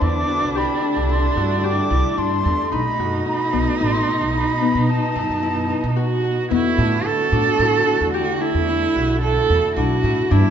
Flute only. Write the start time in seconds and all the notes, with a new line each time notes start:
0.03 D6
0.58 B5
1.12 C6
1.65 D6
2.18 C6
2.73 B5
3.27 B5
3.81 C6
4.35 B5
4.90 A5